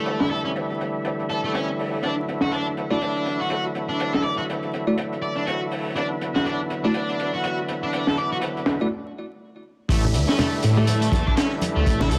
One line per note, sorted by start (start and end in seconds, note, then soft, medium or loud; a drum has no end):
0.00 8.87 D3 medium
0.00 8.87 E3 medium
0.00 1.99 G3 medium
0.00 0.19 A3 medium
0.00 5.92 A3 medium
0.00 8.87 E4 medium
0.06 closed hi-hat medium
0.20 0.30 E4 medium
0.20 snare soft
0.31 0.41 A4 medium
0.31 closed hi-hat medium
0.45 0.50 C#4 medium
0.56 closed hi-hat medium
0.70 closed hi-hat soft
0.81 closed hi-hat medium
1.05 closed hi-hat medium
1.19 closed hi-hat soft
1.29 1.40 A4 medium
1.29 closed hi-hat medium
1.44 1.51 A3 medium
1.54 1.67 C#4 loud
1.54 closed hi-hat medium
1.79 open hi-hat medium
2.03 8.88 F#3 medium
2.03 2.14 D4 medium
2.03 closed hi-hat medium
2.28 closed hi-hat medium
2.41 2.51 F#4 medium
2.41 snare medium
2.52 2.65 D4 medium
2.52 closed hi-hat medium
2.77 closed hi-hat medium
2.90 2.97 A3 medium
2.90 3.39 D4 medium
2.90 2.97 E4 medium
2.90 2.97 F#4 medium
2.90 2.97 D5 medium
3.01 closed hi-hat medium
3.15 closed hi-hat soft
3.26 closed hi-hat medium
3.40 3.48 F#4 medium
3.50 3.64 F#4 medium
3.50 closed hi-hat medium
3.75 closed hi-hat medium
3.89 4.12 D4 medium
4.00 closed hi-hat medium
4.13 4.23 A4 medium
4.13 snare soft
4.24 4.35 D5 medium
4.24 closed hi-hat medium
4.38 4.43 F#4 medium
4.50 closed hi-hat medium
4.62 closed hi-hat soft
4.73 closed hi-hat medium
4.87 4.94 A3 medium
4.87 4.94 E4 medium
4.87 4.94 F#4 medium
4.87 4.94 D5 medium
4.98 closed hi-hat medium
5.12 closed hi-hat soft
5.22 5.33 D5 medium
5.36 5.44 D4 medium
5.47 5.60 F#4 loud
5.47 closed hi-hat medium
5.71 open hi-hat medium
5.96 8.88 B3 medium
5.96 6.07 D4 medium
5.96 closed hi-hat medium
6.21 closed hi-hat medium
6.35 6.45 F#4 medium
6.35 snare medium
6.45 6.59 D4 medium
6.45 closed hi-hat medium
6.70 closed hi-hat medium
6.84 6.91 A3 medium
6.84 7.32 D4 medium
6.84 6.91 E4 medium
6.84 6.91 F#4 medium
6.84 6.91 D5 medium
6.94 closed hi-hat medium
7.09 closed hi-hat soft
7.19 closed hi-hat medium
7.33 7.41 F#4 medium
7.44 7.58 F#4 medium
7.44 closed hi-hat medium
7.68 closed hi-hat medium
7.83 8.06 D4 medium
7.93 closed hi-hat medium
8.07 8.17 A4 medium
8.07 snare soft
8.17 8.29 D5 medium
8.17 closed hi-hat medium
8.32 8.37 F#4 medium
8.41 closed hi-hat medium
8.57 closed hi-hat soft
8.66 snare loud
8.66 closed hi-hat medium
8.81 8.88 A3 medium
8.81 8.88 E4 medium
8.81 8.88 F#4 medium
8.81 8.88 D5 medium
9.89 10.16 A1 loud
9.89 12.19 D3 medium
9.89 12.19 E3 medium
9.89 12.19 G3 medium
9.89 10.01 A3 medium
9.89 12.19 A3 medium
9.89 12.19 E4 medium
9.89 kick loud
9.89 closed hi-hat medium
9.89 downlifter medium
10.05 low conga medium
10.14 10.25 D2 medium
10.14 closed hi-hat medium
10.28 10.38 C#4 medium
10.28 snare medium
10.39 10.52 A3 medium
10.39 snare loud
10.39 closed hi-hat medium
10.39 low conga medium
10.63 11.09 A2 medium
10.63 closed hi-hat medium
10.63 high bongo medium
10.77 10.84 A3 medium
10.77 11.25 A3 medium
10.77 10.84 E4 medium
10.77 10.84 G4 medium
10.77 10.84 D5 medium
10.77 high bongo medium
10.87 closed hi-hat medium
10.87 high conga medium
11.02 closed hi-hat soft
11.12 11.23 E2 medium
11.12 kick loud
11.12 closed hi-hat medium
11.12 high bongo medium
11.12 high conga medium
11.27 11.35 D4 medium
11.27 kick medium
11.36 11.50 C#4 medium
11.36 snare loud
11.36 closed hi-hat medium
11.62 closed hi-hat medium
11.62 high conga medium
11.75 11.84 D2 medium
11.75 11.99 A3 medium
11.86 12.13 A1 medium
11.86 kick loud
11.86 closed hi-hat medium
12.00 12.10 E4 medium
12.00 snare medium
12.00 low conga loud
12.10 12.19 D2 medium
12.10 12.19 A4 medium
12.10 closed hi-hat medium